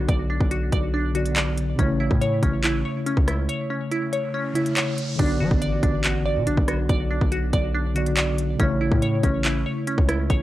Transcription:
Already playing: tine electric piano D3 B3 F#4 D5, synth pluck D4 F#4
0.09 808-style bass B1, synth pluck D5, kick, closed hi-hat
0.30 synth pluck D4
0.41 808-style bass B1, kick
0.51 synth pluck F#4, closed hi-hat
0.72 808-style bass B1, synth pluck D5, kick, closed hi-hat
0.94 synth pluck D4
1.13 tine electric piano D3 B3 F#4 D5, synth pluck F#4, closed hi-hat
1.26 closed hi-hat
1.36 synth pluck D5, clap, closed hi-hat
1.57 closed hi-hat
1.76 808-style bass A1, tine electric piano C#3 A3, synth pluck C#4, kick, closed hi-hat
1.80 tine electric piano E4 C#5
2.00 synth pluck E4
2.11 808-style bass A2, kick
2.21 synth pluck C#5, closed hi-hat
2.43 808-style bass A1, synth pluck C#4, kick, closed hi-hat
2.64 synth pluck E4, clap, closed hi-hat
2.85 synth pluck C#5
3.06 synth pluck C#4, closed hi-hat
3.17 808-style bass C#2, kick
3.28 synth pluck E4, cross-stick, closed hi-hat
3.49 synth pluck C#5, closed hi-hat, riser
3.70 synth pluck C#4
3.92 synth pluck E4, closed hi-hat
4.13 synth pluck C#5, closed hi-hat
4.34 synth pluck C#4
4.53 tine electric piano C#3 A3 E4 C#5, synth pluck E4, closed hi-hat
4.66 closed hi-hat
4.77 synth pluck C#5, clap, closed hi-hat
4.98 closed hi-hat
5.16 808-style bass B1, tine electric piano D3 B3, synth pluck D4, kick, closed hi-hat, crash, impact
5.20 tine electric piano F#4 D5
5.40 808-style bass F#3, synth pluck F#4
5.51 808-style bass A1, kick
5.62 synth pluck D5, closed hi-hat
5.83 808-style bass A1, synth pluck D4, kick, closed hi-hat
6.04 synth pluck F#4, clap, closed hi-hat
6.26 synth pluck D5
6.36 808-style bass B2
6.47 808-style bass A1, synth pluck D4, closed hi-hat
6.57 808-style bass B1, kick
6.68 synth pluck F#4, cross-stick, closed hi-hat
6.89 808-style bass B1, synth pluck D5, kick, closed hi-hat
7.11 synth pluck D4
7.21 808-style bass B1, kick
7.32 synth pluck F#4, closed hi-hat
7.53 808-style bass B1, synth pluck D5, kick, closed hi-hat
7.75 synth pluck D4
7.94 tine electric piano D3 B3 F#4 D5, synth pluck F#4, closed hi-hat
8.06 closed hi-hat
8.17 synth pluck D5, clap, closed hi-hat
8.38 closed hi-hat
8.56 808-style bass A1, tine electric piano C#3 A3, synth pluck C#4, kick, closed hi-hat
8.61 tine electric piano E4 C#5
8.81 synth pluck E4
8.92 808-style bass A2, kick
9.02 synth pluck C#5, closed hi-hat
9.23 808-style bass A1, synth pluck C#4, kick, closed hi-hat
9.45 synth pluck E4, clap, closed hi-hat
9.66 synth pluck C#5
9.87 synth pluck C#4, closed hi-hat
9.98 808-style bass C#2, kick
10.09 synth pluck E4, cross-stick, closed hi-hat
10.30 808-style bass A1, synth pluck C#5, kick, closed hi-hat

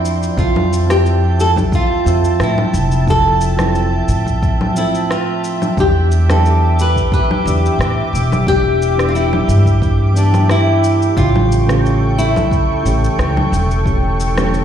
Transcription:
Already playing: upright bass F2, synth keys F3 C4 D4 A4, analog synth pad F3 D5 C6, nylon-string guitar E4, synth texture G5
0.05 shaker
0.23 shaker
0.37 upright bass F2, synth keys F3 C4 A4 E5, nylon-string guitar F4, analog synth pad E5 A5, kick, shaker
0.56 low conga
0.73 shaker
0.87 synth keys F3 C4 E4, nylon-string guitar G4, cross-stick, shaker
0.91 synth keys A4
1.06 shaker
1.40 nylon-string guitar A4, shaker
1.56 kick, low conga, shaker
1.72 nylon-string guitar F4, kick, shaker
2.05 upright bass F2, synth keys F3 C4 E5, shaker
2.09 synth keys A4
2.25 shaker
2.40 upright bass A2, nylon-string guitar E4, cross-stick, shaker
2.58 low conga
2.73 upright bass F1, shaker
2.92 shaker
3.06 synth keys F3 C4 E4 A4, kick, shaker
3.10 nylon-string guitar A4
3.41 shaker
3.57 synth keys F3 C4 E4, cross-stick, low conga, shaker
3.62 synth keys A4
3.75 shaker
4.08 upright bass A2, shaker
4.27 kick, shaker
4.43 kick, shaker
4.61 low conga
4.75 synth keys F3 C4 E5, nylon-string guitar E4, shaker
4.80 synth keys A4
4.95 shaker
5.11 nylon-string guitar F4, cross-stick, shaker
5.44 shaker
5.62 low conga, shaker
5.77 upright bass E2, synth keys E3 B3 D4 G4, analog synth pad G4 D6, nylon-string guitar G4, kick, shaker
6.12 shaker
6.27 synth keys E3 B3 D4, nylon-string guitar A4, cross-stick, low conga, shaker
6.32 synth keys G4
6.46 shaker
6.79 nylon-string guitar B4, shaker
6.96 kick, shaker
7.12 nylon-string guitar B4, kick, shaker
7.31 low conga
7.44 upright bass E2, synth keys E3 B3 D4, shaker
7.49 synth keys G4
7.66 shaker
7.79 upright bass A2, cross-stick, shaker
8.13 upright bass E1, shaker
8.32 low conga, shaker
8.46 synth keys E3 B3 D4 G4, nylon-string guitar G4, kick, shaker
8.82 shaker
8.96 synth keys E3 B3 D4, cross-stick
9.00 synth keys G4, shaker
9.09 nylon-string guitar F4
9.15 nylon-string guitar E4, shaker
9.33 low conga
9.48 upright bass G2, shaker
9.66 kick, shaker
9.82 kick, shaker
10.13 synth keys E3 B3 D4, shaker
10.17 nylon-string guitar D4, synth keys G4
10.34 low conga, shaker
10.49 nylon-string guitar E4, cross-stick, shaker
10.84 shaker
11.02 shaker
11.16 upright bass A1, synth keys C#3 A3 C#4 G4, nylon-string guitar F4, analog synth pad A4 G5 C#6, kick, shaker
11.36 low conga
11.52 shaker
11.67 synth keys C#3 A3 C#4, cross-stick, shaker
11.72 synth keys G4
11.86 shaker
12.18 nylon-string guitar E4, shaker
12.35 kick, low conga, shaker
12.51 kick, shaker
12.83 upright bass A1, synth keys E3 A3 C#4, shaker
12.88 synth keys G4
13.04 shaker
13.18 upright bass C#2, cross-stick, shaker
13.37 low conga
13.52 upright bass E1, shaker
13.71 shaker
13.84 synth keys E3 A3 C#4 G4, kick, shaker
14.20 shaker
14.35 synth keys E3 A3 C#4, cross-stick, low conga, shaker
14.40 synth keys G4
14.54 shaker

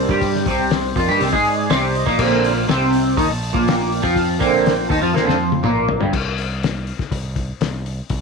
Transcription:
Already playing: harmonium D#3 A#3 D4 C5
0.09 picked electric bass G2, clean electric guitar G3 G4, kick
0.21 kick, open hi-hat
0.35 snare
0.46 picked electric bass C2, clean electric guitar C3 C4, kick, open hi-hat
0.71 snare, open hi-hat
0.94 picked electric bass F2, harmonium D#3 A#3 D4, clean electric guitar F3 F4, kick, open hi-hat
1.08 picked electric bass G2, clean electric guitar G3 G4
1.20 picked electric bass C2, clean electric guitar C3 C4, open hi-hat
1.32 picked electric bass G#2, clean electric guitar G#3 G#4, kick
1.45 harmonium D5, open hi-hat
1.70 picked electric bass C2, clean electric guitar C3 C4, snare, open hi-hat
1.95 harmonium D#5, open hi-hat
2.06 picked electric bass A#1, clean electric guitar A#2 A#3, kick
2.19 picked electric bass A#1, clean electric guitar A#2 A#3, harmonium D3 A#3 C4 F5, kick, crash
2.44 open hi-hat
2.68 picked electric bass C2, clean electric guitar C3 C4, harmonium G5, snare, open hi-hat
2.93 open hi-hat
3.17 picked electric bass D#2, clean electric guitar D#3 D#4, harmonium A5, kick, open hi-hat
3.29 picked electric bass A#1, clean electric guitar A#2
3.43 open hi-hat
3.53 picked electric bass A#1, clean electric guitar A#2 A#3, kick
3.68 harmonium G5, snare, open hi-hat
3.92 open hi-hat
4.02 picked electric bass F2, clean electric guitar F3 F4, kick
4.16 harmonium F5, kick, open hi-hat
4.39 picked electric bass A#1, clean electric guitar A#2 A#3, harmonium D3 A#3 C4 G5, kick, open hi-hat
4.66 snare, open hi-hat
4.89 picked electric bass D#2, clean electric guitar D#3 D#4, harmonium A5, kick, open hi-hat
5.01 picked electric bass F2, clean electric guitar F3 F4
5.13 picked electric bass A#1, clean electric guitar A#2 A#3, harmonium D3 A#3 C4 A#5, snare
5.26 picked electric bass F2, clean electric guitar F3 F4, snare
5.52 high tom
5.63 picked electric bass A#1, clean electric guitar A#2 A#3, mid tom
5.89 floor tom
6.00 picked electric bass G1, clean electric guitar G2 G3, floor tom
6.13 picked electric bass C2, kick, crash
6.38 open hi-hat
6.63 snare, open hi-hat
6.87 open hi-hat
6.99 kick, snare
7.11 picked electric bass C2, kick, open hi-hat
7.36 kick, open hi-hat
7.61 picked electric bass C2, snare, open hi-hat
7.86 open hi-hat
8.10 picked electric bass C2, kick, open hi-hat

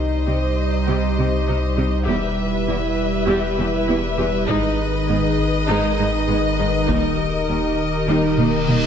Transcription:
Already playing: sub bass C2, analog synth pad G3 D#4 G4 C5, violin section C5 D#5
0.27 cello section C3, viola section G3 D#4
0.87 cello section C3, viola section G3 G4
1.17 cello section C3, viola section G3 G4
1.47 cello section C3, viola section G3 D#4
1.77 cello section C3, viola section G3 G4
2.06 sub bass E1, cello section E2, viola section G3 G4, analog synth pad E4 B4, violin section B4 E5
2.67 cello section E2, viola section G3 E4
3.27 cello section E2, viola section G3 G4
3.58 cello section E2, viola section G3 G4
3.87 cello section E2, viola section G3 E4
4.17 cello section E2, viola section G3 G4
4.48 sub bass G#1, cello section G#2, analog synth pad D#3 D#4 G#4, viola section G#3 D#4, violin section D#5, taiko
5.08 cello section G#2, viola section G#3 B3
5.38 taiko
5.68 cello section G#2, viola section G#3 D#4
5.98 cello section G#2, viola section G#3 D#4
6.28 cello section G#2, viola section G#3 B3
6.58 cello section G#2, viola section G#3 D#4
6.88 sub bass D#1, cello section D#2, viola section G3 D#4, analog synth pad G4 A#4, violin section A#4, taiko, reverse cymbal
7.48 cello section D#2, viola section G3 A#3
8.08 cello section D#2, viola section G3 D#4
8.38 cello section D#2, viola section G3 D#4, taiko mid
8.68 cello section D#2, viola section G3 A#3, taiko mid

